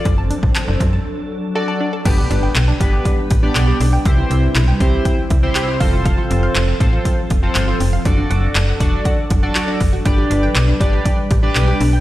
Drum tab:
CC |----------------|x---------------|----------------|----------------|
HH |x-x-x-x---------|x-x-x-x-x-x-x-o-|x-x-x-x-x-x-x-o-|x-x-x-x-x-x-x-o-|
CP |----x-----------|----x-------x---|----x-------x---|----x-------x---|
BD |o--o--o---------|o-----o-o-o-----|o-----o-o-o---o-|o-----o-o-o-----|

CC |----------------|----------------|
HH |x-x-x-x-x-x-x-o-|x-x-x-x-x-x-x-o-|
CP |----x-------x---|----x-------x---|
BD |o-----o-o-o---o-|o-----o-o-o-----|